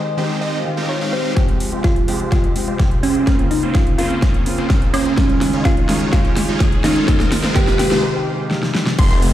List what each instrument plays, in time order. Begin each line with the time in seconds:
Already playing: grand piano D#3 G#3 C4 G4, analog synth pad D#3 G#3 G4 C5, synth pluck D#5
0.17 grand piano D#3 G#3 C4 G4, supersaw synth G#3 C4 D#4 G4 C5
0.41 supersaw synth G#3 C4 D#4 G4 D#5, synth pluck D#5, swell
0.64 grand piano D#3 G#3 C4 G4
0.77 supersaw synth G#3 C4 D#4 G4 A#4
0.89 synth pluck C#5
1.01 supersaw synth G#3 C4 D#4 G4 F5
1.13 synth pluck C4 C5
1.35 analog synth pad C3 G#3 F4 G4, grand piano F3 G#3 C4 G4, supersaw synth G#3 C4 F4 G4 C5, kick, snare, closed hi-hat, riser
1.48 closed hi-hat
1.60 open hi-hat
1.72 supersaw synth G#3 C4 F4 G4 C5, closed hi-hat
1.84 synth pluck F4, kick, snare, closed hi-hat
1.96 closed hi-hat
2.07 grand piano F3 G#3 C4 G4, supersaw synth G#3 C4 F4 G4 C5, open hi-hat
2.20 closed hi-hat
2.32 supersaw synth G#3 C4 F4 G4 D#5, synth pluck F4, kick, snare, closed hi-hat
2.44 closed hi-hat
2.54 grand piano F3 G#3 C4 G4, open hi-hat
2.68 supersaw synth G#3 C4 F4 G4 C5, closed hi-hat
2.79 kick, snare, closed hi-hat
2.91 closed hi-hat
3.03 supersaw synth G#3 C4 F4 G4 C5, synth pluck C#4, open hi-hat
3.15 closed hi-hat
3.26 grand piano C#3 A#3 C4 F4, analog synth pad C#3 A#3 C4, supersaw synth A#3 C4 C#4 F4 C5, kick, snare, closed hi-hat
3.39 closed hi-hat
3.51 synth pluck D#4, open hi-hat
3.63 supersaw synth A#3 C4 C#4 F4 C5
3.75 synth pluck F4, kick, snare, closed hi-hat
3.87 closed hi-hat
3.98 grand piano C#3 A#3 C4 F4, supersaw synth A#3 C4 C#4 F4 C5, synth pluck F4, open hi-hat
4.10 closed hi-hat
4.22 supersaw synth A#3 C4 C#4 F4 C#5, kick, snare, closed hi-hat
4.34 closed hi-hat
4.45 grand piano C#3 A#3 C4 F4, open hi-hat
4.58 supersaw synth A#3 C4 C#4 F4 C5, closed hi-hat
4.70 kick, snare, closed hi-hat
4.82 closed hi-hat
4.94 supersaw synth A#3 C4 C#4 F4 C5, synth pluck C#4, open hi-hat, high woodblock
5.06 closed hi-hat
5.16 grand piano D#3 G#3 C#4 F4, supersaw synth G#3 C#4 D#4 F4 C#5, analog synth pad G#3 D#4, kick, snare, closed hi-hat
5.29 closed hi-hat
5.41 snare, open hi-hat
5.53 supersaw synth G#3 C#4 D#4 F4 C#5
5.65 synth pluck F4, kick, snare, closed hi-hat
5.77 closed hi-hat
5.88 grand piano D#3 G#3 C#4 F4, supersaw synth G#3 C#4 D#4 F4 C#5, snare, open hi-hat
6.01 closed hi-hat
6.12 grand piano D#3 G#3 C#4 F4, supersaw synth G#3 C#4 D#4 F4 C#5, synth pluck F4, kick, snare, closed hi-hat
6.25 closed hi-hat
6.37 snare, open hi-hat
6.48 supersaw synth G#3 C#4 D#4 F4 C#5
6.60 kick, snare, closed hi-hat
6.72 closed hi-hat
6.84 grand piano D#3 G#3 C#4 F4, supersaw synth G#3 C#4 D#4 F4 C#5, synth pluck D#4, snare, open hi-hat
6.96 closed hi-hat
7.07 analog synth pad C3 G#3 G4, grand piano D#3 G#3 C4 F4, supersaw synth G#3 C4 D#4 F4 C5, kick, snare, closed hi-hat
7.20 snare, closed hi-hat
7.32 snare, open hi-hat
7.44 supersaw synth G#3 C4 D#4 F4 C5, snare
7.54 grand piano D#3 G#3 C4 F4, supersaw synth G#3 C4 D#4 F4 C5, synth pluck G4, kick, snare, closed hi-hat
7.67 snare, closed hi-hat
7.79 synth pluck G4, snare, open hi-hat
7.91 supersaw synth G#3 C4 D#4 F4 C5, snare, closed hi-hat
8.51 snare
8.63 snare
8.75 snare
8.87 snare
8.98 detuned saw bass F1, analog synth pad C3 G#3 F4 G4, supersaw synth G#3 C4 F4 G4 C5, analog synth lead C6, kick, closed hi-hat, crash, downlifter
9.10 closed hi-hat
9.22 open hi-hat